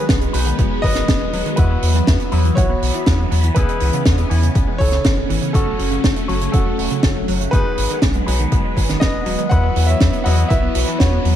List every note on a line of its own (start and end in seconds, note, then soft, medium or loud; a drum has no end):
0.00 3.52 F#3 medium
0.00 1.56 G#3 medium
0.00 1.56 B3 medium
0.00 0.31 D#4 medium
0.00 0.31 F#4 medium
0.00 0.31 G#4 medium
0.00 0.31 B4 medium
0.09 0.27 B1 loud
0.09 0.17 B3 medium
0.09 kick loud
0.09 snare loud
0.09 closed hi-hat medium
0.21 0.29 G#3 medium
0.21 closed hi-hat medium
0.33 0.52 B1 medium
0.33 0.42 F#3 loud
0.33 1.55 D#4 medium
0.33 1.55 F#4 medium
0.33 1.55 G#4 medium
0.33 1.55 B4 medium
0.33 open hi-hat loud
0.46 0.54 D#3 medium
0.46 closed hi-hat medium
0.59 0.68 F#1 medium
0.59 0.67 B3 medium
0.59 kick loud
0.59 closed hi-hat medium
0.71 0.79 G#3 medium
0.82 1.02 G#1 loud
0.82 0.91 F#3 medium
0.82 1.54 B4 medium
0.82 1.59 D#5 loud
0.82 kick medium
0.82 open hi-hat loud
0.95 1.04 D#3 loud
0.95 snare soft
0.95 closed hi-hat medium
1.08 1.27 D#1 medium
1.08 1.16 B3 medium
1.08 kick loud
1.08 snare loud
1.08 closed hi-hat medium
1.21 1.29 G#3 medium
1.33 1.42 D#1 loud
1.33 1.41 F#3 loud
1.33 open hi-hat medium
1.46 1.53 D#3 medium
1.46 closed hi-hat medium
1.56 1.76 E2 loud
1.56 5.51 E3 medium
1.56 5.51 B3 medium
1.56 2.29 B3 medium
1.56 1.66 E4 medium
1.56 2.29 E4 medium
1.56 2.29 F#4 medium
1.56 2.27 B4 loud
1.56 2.29 B4 medium
1.56 kick loud
1.56 closed hi-hat loud
1.71 1.78 B3 medium
1.82 2.01 E2 medium
1.82 1.91 F#3 medium
1.82 open hi-hat loud
1.95 2.03 E3 loud
1.95 closed hi-hat medium
2.07 2.16 E2 loud
2.07 2.16 E4 medium
2.07 kick loud
2.07 snare loud
2.07 closed hi-hat medium
2.20 2.28 B3 medium
2.20 closed hi-hat medium
2.32 2.51 E2 loud
2.32 2.40 F#3 loud
2.32 3.53 B3 medium
2.32 3.53 E4 medium
2.32 3.53 F#4 medium
2.32 3.53 B4 medium
2.32 open hi-hat medium
2.45 2.53 E3 medium
2.45 closed hi-hat medium
2.55 2.75 B1 medium
2.55 2.65 E4 medium
2.55 3.52 F#4 medium
2.55 3.51 C#5 loud
2.55 kick loud
2.55 closed hi-hat medium
2.69 2.77 B3 medium
2.82 2.91 B1 medium
2.82 2.90 F#3 medium
2.82 open hi-hat loud
2.94 3.02 E3 loud
2.94 closed hi-hat medium
3.06 3.25 E2 medium
3.06 3.14 E4 medium
3.06 kick loud
3.06 snare loud
3.06 closed hi-hat medium
3.19 3.27 B3 medium
3.31 3.50 E2 loud
3.31 3.39 F#3 loud
3.31 open hi-hat loud
3.44 3.52 E3 medium
3.44 closed hi-hat medium
3.54 3.65 C#2 loud
3.54 3.64 B3 medium
3.54 4.27 B3 medium
3.54 4.27 C#4 medium
3.54 7.49 C#4 medium
3.54 4.27 E4 medium
3.54 4.27 G#4 medium
3.54 4.03 G#4 medium
3.54 4.01 B4 loud
3.54 kick loud
3.54 closed hi-hat medium
3.69 3.77 G#3 medium
3.69 closed hi-hat medium
3.80 3.90 C#2 medium
3.80 3.89 E3 medium
3.80 open hi-hat loud
3.93 4.01 C#3 loud
3.93 closed hi-hat medium
4.05 4.24 E2 loud
4.05 4.14 B3 medium
4.05 kick loud
4.05 snare loud
4.05 closed hi-hat medium
4.18 4.26 G#3 medium
4.18 closed hi-hat medium
4.30 4.49 E2 medium
4.30 4.38 E3 loud
4.30 5.51 B3 medium
4.30 5.51 C#4 medium
4.30 5.51 E4 medium
4.30 5.51 G#5 medium
4.30 open hi-hat loud
4.43 4.51 C#3 medium
4.43 closed hi-hat medium
4.55 4.64 B1 medium
4.55 4.63 B3 medium
4.55 kick loud
4.55 closed hi-hat medium
4.67 4.76 G#3 medium
4.78 4.98 C#2 loud
4.78 4.88 E3 medium
4.78 5.51 A4 medium
4.78 5.50 C#5 loud
4.78 kick medium
4.78 open hi-hat loud
4.92 5.00 C#3 loud
4.92 snare soft
4.92 closed hi-hat medium
5.04 5.23 G#1 medium
5.04 5.13 B3 medium
5.04 kick loud
5.04 snare loud
5.04 closed hi-hat medium
5.17 5.25 G#3 medium
5.29 5.39 G#1 loud
5.29 5.38 E3 loud
5.29 open hi-hat loud
5.42 5.50 C#3 medium
5.42 closed hi-hat medium
5.53 5.73 F#1 loud
5.53 11.36 F#3 medium
5.53 7.51 A3 medium
5.53 6.26 C#4 medium
5.53 5.62 C#4 medium
5.53 6.26 F#4 medium
5.53 6.25 F#4 medium
5.53 6.24 A4 medium
5.53 6.26 A4 medium
5.53 6.26 C#5 medium
5.53 kick loud
5.53 closed hi-hat medium
5.67 5.75 A3 medium
5.79 5.98 F#1 loud
5.79 5.87 F#3 medium
5.79 open hi-hat loud
5.91 5.99 C#3 loud
5.91 closed hi-hat medium
6.04 6.13 F#1 loud
6.04 6.12 C#4 medium
6.04 kick loud
6.04 snare loud
6.04 closed hi-hat medium
6.16 6.24 A3 medium
6.16 closed hi-hat medium
6.28 6.47 F#1 loud
6.28 6.37 F#3 loud
6.28 7.50 C#4 medium
6.28 7.50 F#4 medium
6.28 7.50 A4 medium
6.28 7.50 C#5 medium
6.28 open hi-hat medium
6.41 6.49 C#3 medium
6.41 closed hi-hat medium
6.52 6.72 E1 medium
6.52 6.62 C#4 medium
6.52 7.49 F#4 medium
6.52 7.48 A4 medium
6.52 kick loud
6.52 closed hi-hat medium
6.66 6.74 A3 medium
6.78 6.87 E1 medium
6.78 6.86 F#3 medium
6.78 open hi-hat loud
6.90 6.99 C#3 loud
6.90 closed hi-hat medium
7.03 7.22 F#1 medium
7.03 7.11 C#4 medium
7.03 kick loud
7.03 snare loud
7.03 closed hi-hat medium
7.16 7.24 A3 medium
7.28 7.46 F#1 loud
7.28 7.36 F#3 loud
7.28 open hi-hat loud
7.40 7.48 C#3 medium
7.40 closed hi-hat medium
7.51 7.62 G#1 medium
7.51 9.49 G#3 medium
7.51 9.49 B3 medium
7.51 7.61 B3 medium
7.51 8.24 D#4 medium
7.51 8.24 F#4 medium
7.51 8.24 G#4 medium
7.51 7.99 G#4 medium
7.51 7.98 B4 loud
7.51 8.24 B4 medium
7.51 kick loud
7.51 closed hi-hat medium
7.65 7.73 G#3 medium
7.77 7.87 G#1 medium
7.77 7.86 F#3 medium
7.77 open hi-hat loud
7.90 7.98 D#3 loud
7.90 closed hi-hat medium
8.02 8.21 B1 loud
8.02 8.11 B3 medium
8.02 kick loud
8.02 snare loud
8.02 closed hi-hat medium
8.14 8.23 G#3 medium
8.14 closed hi-hat medium
8.26 8.46 B1 medium
8.26 8.35 F#3 loud
8.26 9.48 D#4 medium
8.26 9.48 F#4 medium
8.26 9.48 G#4 medium
8.26 9.48 B4 medium
8.26 open hi-hat loud
8.39 8.48 D#3 medium
8.39 closed hi-hat medium
8.52 8.61 F#1 medium
8.52 8.60 B3 medium
8.52 kick loud
8.52 closed hi-hat medium
8.64 8.72 G#3 medium
8.77 8.95 G#1 loud
8.77 8.85 F#3 medium
8.77 kick medium
8.77 open hi-hat loud
8.89 8.97 D#3 loud
8.89 snare soft
8.89 closed hi-hat medium
9.00 9.20 D#1 medium
9.00 9.10 B3 medium
9.00 9.48 B4 medium
9.00 9.52 D#5 loud
9.00 kick loud
9.00 snare loud
9.00 closed hi-hat medium
9.14 9.22 G#3 medium
9.26 9.36 D#1 loud
9.26 9.34 F#3 loud
9.26 open hi-hat loud
9.38 9.47 D#3 medium
9.38 closed hi-hat medium
9.49 9.70 E2 loud
9.49 11.36 E3 medium
9.49 11.36 B3 medium
9.49 10.22 B3 medium
9.49 9.59 E4 medium
9.49 10.22 E4 medium
9.49 10.22 F#4 medium
9.49 10.22 B4 medium
9.49 9.86 B4 medium
9.49 9.85 F#5 loud
9.49 kick loud
9.49 closed hi-hat medium
9.63 9.71 B3 medium
9.76 9.94 E2 loud
9.76 9.84 F#3 medium
9.76 open hi-hat loud
9.86 9.96 E3 loud
9.86 10.23 C#5 medium
9.86 10.26 E5 loud
9.86 closed hi-hat medium
10.00 10.10 E2 loud
10.00 10.09 E4 medium
10.00 kick loud
10.00 snare loud
10.00 closed hi-hat medium
10.13 10.21 B3 medium
10.13 closed hi-hat medium
10.24 10.44 E2 loud
10.24 10.33 F#3 loud
10.24 11.36 B3 medium
10.24 11.36 E4 medium
10.24 11.36 F#4 medium
10.24 11.36 B4 medium
10.24 10.49 D#5 medium
10.24 10.50 F#5 loud
10.24 open hi-hat loud
10.38 10.46 E3 medium
10.38 closed hi-hat medium
10.49 10.69 B1 medium
10.49 10.58 E4 medium
10.49 10.97 B4 medium
10.49 10.95 E5 loud
10.49 kick loud
10.49 closed hi-hat medium
10.63 10.71 B3 medium
10.75 10.84 B1 medium
10.75 10.83 F#3 medium
10.75 open hi-hat loud
10.88 10.96 E3 loud
10.88 closed hi-hat medium
10.99 11.18 E2 medium
10.99 11.08 E4 medium
10.99 11.36 F#4 medium
10.99 11.36 C#5 loud
10.99 kick loud
10.99 snare loud
10.99 closed hi-hat medium
11.13 11.20 B3 medium
11.25 11.36 E2 loud
11.25 11.33 F#3 loud
11.25 open hi-hat loud